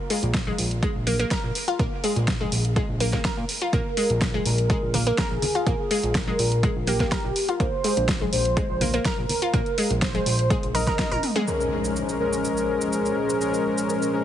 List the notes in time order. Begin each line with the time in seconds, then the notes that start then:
0.10 G#3, open hi-hat
0.23 A#1, closed hi-hat
0.34 kick, snare, closed hi-hat
0.47 G#3, high conga
0.58 A#1, open hi-hat
0.71 closed hi-hat
0.83 G#3, kick, closed hi-hat
0.95 A#1
1.07 A#3, open hi-hat, high conga
1.19 A#3, closed hi-hat
1.31 A#4, kick, snare, closed hi-hat
1.44 A#1
1.55 open hi-hat
1.68 F4, closed hi-hat
1.79 A#1 A#3, kick, closed hi-hat
2.04 G#3, open hi-hat
2.16 A#1, closed hi-hat
2.28 kick, snare, closed hi-hat
2.41 G#3, high conga
2.52 A#1, open hi-hat
2.65 closed hi-hat
2.76 G#3, kick, closed hi-hat
2.89 A#1
3.00 A#3, open hi-hat, high conga
3.13 A#3, kick, snare, closed hi-hat
3.25 A#4, kick, snare, closed hi-hat
3.37 A#2
3.49 open hi-hat
3.61 F4, closed hi-hat
3.73 A#1 A#3 A#4, kick, closed hi-hat
3.97 G#3, open hi-hat
4.10 A#1, closed hi-hat
4.21 kick, snare, closed hi-hat
4.34 G#3, high conga
4.46 A#1 A#4, open hi-hat
4.58 closed hi-hat
4.70 G#3, kick, closed hi-hat
4.82 A#1
4.94 A#3, open hi-hat, high conga, low conga
5.07 A#3, closed hi-hat
5.18 G#4 A#4, kick, snare, closed hi-hat, low conga
5.31 A#1
5.42 open hi-hat, low conga
5.55 F4, closed hi-hat
5.67 A#1 A#3, kick, closed hi-hat
5.91 G#3, open hi-hat
6.03 A#1, closed hi-hat
6.15 A#4, kick, snare, closed hi-hat
6.27 G#3, high conga
6.39 A#1, open hi-hat
6.52 closed hi-hat
6.63 G#3, kick, closed hi-hat
6.76 A#1
6.87 A#3 G4, open hi-hat, high conga
7.00 A#3, kick, snare, closed hi-hat, low conga
7.12 A#4, kick, snare, closed hi-hat
7.24 A#1
7.36 open hi-hat
7.49 F4, closed hi-hat
7.60 A#1 A#3 C5, kick, closed hi-hat
7.84 G#3, open hi-hat
7.97 A#1, closed hi-hat
8.08 kick, snare, closed hi-hat
8.21 G#3, high conga
8.32 A#1 C5, open hi-hat
8.45 closed hi-hat
8.57 G#3, kick, closed hi-hat
8.70 A#1
8.81 A#3, open hi-hat, high conga, low conga
8.94 A#3, closed hi-hat
9.05 A#4, kick, snare, closed hi-hat, low conga
9.18 A#1
9.29 open hi-hat, low conga
9.42 F4, closed hi-hat
9.54 A#1 A#3, kick, closed hi-hat
9.66 closed hi-hat
9.78 G#3, open hi-hat
9.90 A#1, closed hi-hat
10.02 C5, kick, snare, closed hi-hat
10.14 G#3, closed hi-hat, high conga
10.26 A#1, open hi-hat
10.39 closed hi-hat
10.50 G#3, kick, closed hi-hat
10.63 A#1, closed hi-hat
10.75 A#4 D#5, open hi-hat, high conga
10.87 A#4, kick, snare, closed hi-hat, low conga
10.99 A#4, kick, snare, closed hi-hat, high tom
11.12 A#1 A#4, high tom
11.23 open hi-hat, mid tom
11.36 G#3, closed hi-hat, mid tom
11.47 A#2 F3 G#3 C#4 A#4 C5, impact, shaker
11.61 shaker
11.85 shaker
11.96 shaker
12.09 shaker
12.20 G#3 C#4 A#4
12.33 shaker
12.45 shaker
12.57 shaker
12.81 shaker
12.92 G#4, shaker
13.06 shaker
13.30 shaker
13.41 G#3 C#4 A#4, shaker
13.54 shaker
13.78 shaker
13.89 A#4, shaker
14.02 shaker
14.13 G#3 C#4 A#4